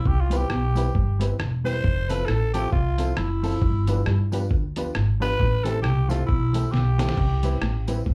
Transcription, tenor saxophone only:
0.08 G4
0.21 F4
0.37 G4
1.65 C5
2.09 B4
2.25 A4
2.54 G4
2.72 F4
3.17 E4
5.22 B4
5.64 A4
5.82 G4
6.10 F4
6.26 E4
6.71 G4

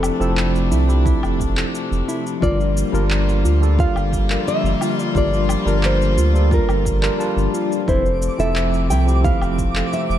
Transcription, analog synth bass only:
Already playing: F1
0.20 F1
0.71 C2
1.24 F1
1.92 F1
2.42 G1
2.93 G1
3.44 D2
3.96 G1
4.64 G1
5.15 G1
5.66 G1
6.17 D2
6.68 G1
7.37 G1
7.88 F1
8.39 F1
8.90 C2
9.41 F1
10.10 F1

